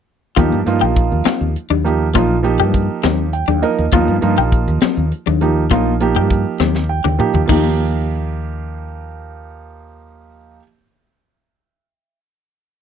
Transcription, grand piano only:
0.36 F3 A#3 D#4 G4
0.66 F3 A#3 D#4 F4
1.84 F3 A#3 D#4 G4
2.14 F3 A#3 D#4 F4
2.43 F3 A#3 D#4 G4
3.33 G5
3.62 F3 A#3 D#4 A#4 D#5
3.93 F3 A#3 D#4 F4
4.21 F3 A#3 D#4 F4
5.41 F3 A#3 D#4 G4
5.71 F3 A#3 D#4 F4
6.00 F3 A#3 D#4 G4
6.89 G5
7.18 F3 A#3 D#4 G4
7.46 F3 A#3
7.50 D#4 G4

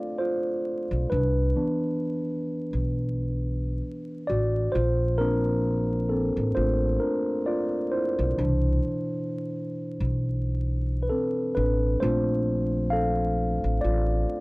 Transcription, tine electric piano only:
Already playing: F4 A4 D5 F5
0.19 F4 C5
1.10 D4 B4
1.56 E3 B3 D4
4.27 F#4 D5
4.72 F4 C5
5.18 A#3 C4 D4 A#4
6.09 C4 A4
6.55 A3 C4 D4 F4 C5
7.00 D4 A#4
7.46 F4 D5
7.92 E4 C5
8.37 B2 E3 D4
11.03 B4
11.10 C4 A4
11.55 D4 B4
12.00 A3 C4 D4 F4 C5
12.90 A4 F5
13.81 F4 D5

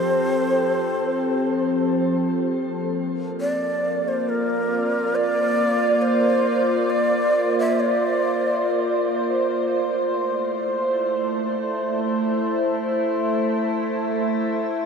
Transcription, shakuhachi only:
Already playing: C5
3.41 D5
4.08 C5
4.29 A#4
5.16 D5
6.02 C5
6.90 D5
7.59 E5
7.80 D5

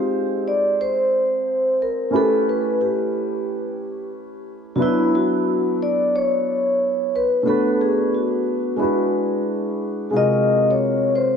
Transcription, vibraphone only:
Already playing: G4
0.48 D5
0.81 C5
1.82 A#4
2.16 A4
2.49 B4
2.81 G4
4.76 F#4
4.82 E4
5.15 F#4
5.83 D5
6.16 C#5
7.16 B4
7.47 A4
7.81 G#4
8.15 F#4
10.17 D#5
10.71 C#5
11.16 C5

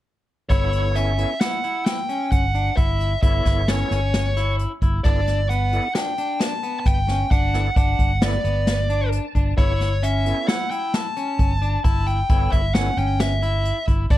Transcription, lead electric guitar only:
0.49 C#5
0.95 E5
1.41 F#5
1.86 G5
2.32 F#5
2.77 E5
3.23 E5
3.69 C#5
5.04 D5
5.49 F#5
5.95 G5
6.40 A5
6.80 A5
6.86 G5
7.31 F#5
7.77 F#5
8.22 D5
9.58 C#5
10.03 E5
10.48 F#5
10.70 G5
10.94 A5
11.85 A5
12.07 G5
12.52 E5
12.75 F#5
12.98 G5
13.21 E5
14.11 D5

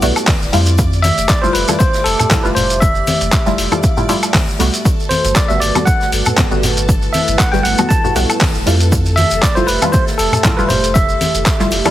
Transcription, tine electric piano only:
1.02 E5
1.28 D5
1.42 C5
1.53 B4
1.79 C5
2.04 A4
2.43 B4
2.55 C5
2.80 E5
5.09 C5
5.35 D5
5.48 E5
5.60 D5
5.85 F#5
7.13 E5
7.38 F#5
7.52 G5
7.63 F#5
7.89 A5
9.16 E5
9.41 D5
9.55 C5
9.67 B4
9.92 C5
10.18 A4
10.57 B4
10.69 C5
10.94 E5

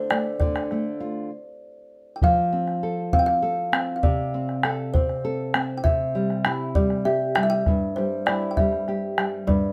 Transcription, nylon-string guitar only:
Already playing: D3
0.11 A3
0.41 D3
0.72 A3
1.00 F4
2.23 F3
2.53 C4
2.83 A4
3.13 C4
3.42 A4
3.72 C4
4.03 C3
4.34 C4
4.64 A4
4.95 C4
5.25 A4
5.54 C4
5.85 C3
6.15 G3
6.46 E4
6.76 G3
7.05 G4
7.37 G3
7.68 G2
7.98 G3
8.28 E4
8.59 G3
8.89 G4
9.18 G3
9.47 G2

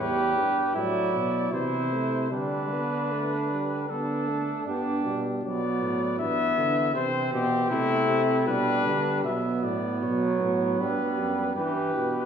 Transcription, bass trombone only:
0.00 E2
0.38 G2
0.75 A2
1.14 B2
1.52 C3
2.31 D3
3.89 D3
4.67 G2
5.05 B2
5.44 B2
5.82 A2
6.19 G2
6.57 D3
6.95 C3
7.33 B2
7.70 C3
8.09 C3
8.48 B2
8.86 D3
9.24 B2
9.63 A2
10.02 B2
10.40 A2
10.79 G2
11.17 F#2
11.55 G2

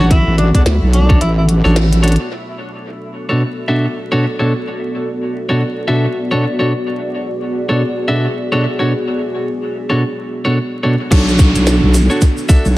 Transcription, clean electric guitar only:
0.00 D4 F#4 A4 C#5
1.09 D4 F#4 A4 C#5
1.64 D4 F#4 A4 C#5
2.03 D4 F#4 A4 C#5
3.29 B2 D4 F#4 A4 C#5
3.68 B2 D4 F#4 A4 E5
4.12 B2 D4 F#4 A4 C#5
4.39 B2 D4 F#4 A4 C#5
5.49 B2 D4 F#4 A4 C#5
5.88 B2 D4 F#4 A4 E5
6.31 B2 D4 F#4 A4 C#5
6.59 B2 D4 F#4 A4 C#5
7.69 B2 D4 F#4 A4 C#5
8.08 B2 D4 F#4 A4 E5
8.52 B2 D4 F#4 A4 C#5
8.79 B2 D4 F#4 A4 C#5
9.89 B2 D4 F#4 A4 C#5
10.45 B2 D4 F#4 A4 C#5
10.83 B2 D4 F#4 A4 C#5
11.11 D4 F#4 A4 C#5
12.10 D4 F#4 A4 C#5
12.49 D4 F#4 A4 E5

